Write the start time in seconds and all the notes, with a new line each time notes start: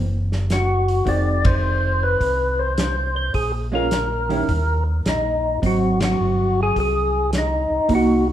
Already playing: F#1
0.32 snare
0.50 F#4, snare, closed hi-hat
0.88 open hi-hat
1.05 F1 D#3 G#3 C4 D5, kick, open hi-hat
1.45 C5, kick, ride
2.03 B4
2.20 C2, kick, open hi-hat
2.59 C5
2.78 snare, closed hi-hat
3.16 C5
3.34 A#1 G#4, kick, open hi-hat
3.72 G#3 C#4 F4 A#4
3.91 snare, closed hi-hat
4.29 D#3 G3 C#4 E4, open hi-hat
4.49 D#2, kick, open hi-hat
5.05 A#1 D#4, snare, closed hi-hat
5.62 G#1 F#3 C4, kick, open hi-hat
5.66 F#4
6.00 F#4, snare, ride
6.20 G1
6.63 G#4
6.76 C2, kick, open hi-hat
6.80 G#4
7.33 snare, closed hi-hat
7.38 D#4
7.70 C2
7.89 C2 A#3 D#4 F#4, kick, open hi-hat
7.95 F#4